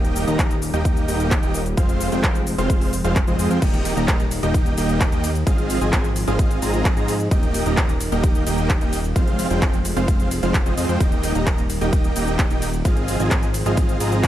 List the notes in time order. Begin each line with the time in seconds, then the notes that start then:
Already playing: D#1 D#3 G3 A#3 D#4 G4 D#5 G5
0.05 closed hi-hat
0.16 open hi-hat, shaker
0.27 D#1 A#3 D#4 G4 D#5 A#5, closed hi-hat, shaker
0.39 kick, clap, closed hi-hat, shaker
0.51 closed hi-hat, shaker
0.62 open hi-hat, shaker
0.74 D#1 A#3 D#4 G4 D#5 G5, closed hi-hat, shaker
0.85 kick, closed hi-hat, shaker
0.97 closed hi-hat, shaker
1.08 D#1 A#3 D#4 G4 D#5 G5, open hi-hat, shaker
1.20 closed hi-hat, shaker
1.31 kick, clap, closed hi-hat, shaker
1.43 D#1 A#3 D#4 G4 D#5 G5, closed hi-hat, shaker
1.54 open hi-hat, shaker
1.66 closed hi-hat, shaker
1.77 F1 F3 G#3 C4 F4 C5 F5, kick, closed hi-hat, shaker
1.89 closed hi-hat, shaker
2.01 open hi-hat, shaker
2.12 F1 G#3 C4 F4 C5 G5, closed hi-hat, shaker
2.24 kick, clap, closed hi-hat, shaker
2.35 closed hi-hat, shaker
2.47 open hi-hat, shaker
2.58 F1 G#3 C4 F4 C5 F5, closed hi-hat, shaker
2.70 kick, closed hi-hat, shaker
2.81 open hi-hat, shaker
2.93 open hi-hat, shaker
3.04 F1 G#3 C4 F4 C5 F5, closed hi-hat, shaker
3.16 kick, clap, closed hi-hat, shaker
3.27 F1 G#3 C4 F4 C5 D#5, closed hi-hat, shaker
3.39 F1 G#3 C4 F4 C5 D#5, open hi-hat, shaker
3.50 F2 G#3 C4 F4 C5 G5, closed hi-hat, shaker
3.62 D#1 D#3 G3 A#3 D#4 G4 D#5 G5, kick, closed hi-hat, crash, ride, shaker
3.74 closed hi-hat
3.85 open hi-hat, ride, shaker
3.97 D#1 A#3 D#4 G4 D#5 A#5, closed hi-hat, shaker
4.08 kick, clap, closed hi-hat, ride, shaker
4.20 closed hi-hat, shaker
4.31 open hi-hat, ride, shaker
4.43 D#1 A#3 D#4 G4 D#5 G5, closed hi-hat, shaker
4.54 kick, closed hi-hat, ride, shaker
4.66 closed hi-hat, shaker
4.77 D#1 A#3 D#4 G4 D#5 G5, open hi-hat, ride, shaker
4.89 closed hi-hat, shaker
5.01 kick, clap, closed hi-hat, ride, shaker
5.12 D#2 A#3 D#4 G4 D#5 G5, closed hi-hat, shaker
5.24 open hi-hat, ride, shaker
5.35 closed hi-hat, shaker
5.47 G#1 F3 G#3 C4 F4 G#4 D#5 F5, kick, closed hi-hat, ride, shaker
5.58 closed hi-hat
5.70 open hi-hat, ride, shaker
5.81 G#1 C4 F4 G#4 D#5 G#5, closed hi-hat, shaker
5.93 kick, clap, closed hi-hat, ride, shaker
6.04 closed hi-hat, shaker
6.16 open hi-hat, ride, shaker
6.27 G#1 C4 F4 G#4 D#5 F5, closed hi-hat, shaker
6.39 kick, closed hi-hat, ride, shaker
6.51 closed hi-hat, shaker
6.62 G#1 C4 F4 G#4 D#5 A#5, open hi-hat, ride, shaker
6.74 closed hi-hat, shaker
6.85 kick, clap, closed hi-hat, ride, shaker
6.97 G#2 C4 F4 G#4 D#5 A#5, closed hi-hat, shaker
7.08 open hi-hat, ride, shaker
7.20 closed hi-hat, shaker
7.31 D#1 D#3 G3 A#3 D#4 G4 D#5 G5, kick, closed hi-hat, ride, shaker
7.43 closed hi-hat
7.54 open hi-hat, ride, shaker
7.66 D#1 A#3 D#4 G4 D#5 A#5, closed hi-hat, shaker
7.77 kick, clap, closed hi-hat, ride, shaker
7.89 closed hi-hat, shaker
8.01 open hi-hat, ride, shaker
8.12 D#1 A#3 D#4 G4 D#5 G5, closed hi-hat, shaker
8.24 kick, closed hi-hat, ride, shaker
8.35 closed hi-hat, shaker
8.47 D#1 A#3 D#4 G4 D#5 G5, open hi-hat, ride, shaker
8.58 closed hi-hat, shaker
8.70 kick, clap, closed hi-hat, ride, shaker
8.81 D#1 A#3 D#4 G4 D#5 G5, closed hi-hat, shaker
8.93 open hi-hat, ride, shaker
9.04 closed hi-hat, shaker
9.16 F1 F3 G#3 C4 F4 C5 F5, kick, closed hi-hat, ride, shaker
9.27 closed hi-hat
9.39 open hi-hat, ride, shaker
9.50 F1 G#3 C4 F4 C5 G5, closed hi-hat, shaker
9.62 kick, clap, closed hi-hat, ride, shaker
9.73 closed hi-hat, shaker
9.85 open hi-hat, ride, shaker
9.97 F1 G#3 C4 F4 C5 F5, closed hi-hat, shaker
10.08 kick, closed hi-hat, ride, shaker
10.20 closed hi-hat, shaker
10.31 open hi-hat, ride, shaker
10.43 F1 G#3 C4 F4 C5 F5, closed hi-hat, shaker
10.54 kick, clap, closed hi-hat, ride, shaker
10.66 F1 G#3 C4 F4 C5 D#5, closed hi-hat, shaker
10.77 F2 G#3 C4 F4 C5 D#5, open hi-hat, ride, shaker
10.89 F2 G#3 C4 F4 C5 G5, closed hi-hat, shaker
11.00 D#1 D#3 G3 A#3 D#4 G4 D#5 G5, kick, closed hi-hat, ride, shaker
11.12 closed hi-hat
11.23 open hi-hat, ride, shaker
11.35 D#1 A#3 D#4 G4 D#5 A#5, closed hi-hat, shaker
11.47 kick, clap, closed hi-hat, ride, shaker
11.58 closed hi-hat, shaker
11.70 open hi-hat, ride, shaker
11.81 D#1 A#3 D#4 G4 D#5 G5, closed hi-hat, shaker
11.93 kick, closed hi-hat, ride, shaker
12.04 closed hi-hat, shaker
12.16 D#1 A#3 D#4 G4 D#5 G5, open hi-hat, ride, shaker
12.27 closed hi-hat, shaker
12.39 kick, clap, closed hi-hat, ride, shaker
12.50 D#1 A#3 D#4 G4 D#5 G5, closed hi-hat, shaker
12.62 open hi-hat, ride, shaker
12.74 closed hi-hat, shaker
12.85 G#1 F3 G#3 C4 F4 G#4 D#5 F5, kick, closed hi-hat, ride, shaker
12.97 closed hi-hat
13.08 open hi-hat, ride, shaker
13.20 G#1 C4 F4 G#4 D#5 G#5, closed hi-hat, shaker
13.31 kick, clap, closed hi-hat, ride, shaker
13.43 closed hi-hat, shaker
13.54 open hi-hat, ride, shaker
13.66 G#1 C4 F4 G#4 D#5 F5, closed hi-hat, shaker
13.77 kick, closed hi-hat, ride, shaker
13.89 closed hi-hat, shaker
14.00 G#1 C4 F4 G#4 D#5 A#5, open hi-hat, ride, shaker
14.12 closed hi-hat, shaker
14.23 kick, clap, closed hi-hat, ride, shaker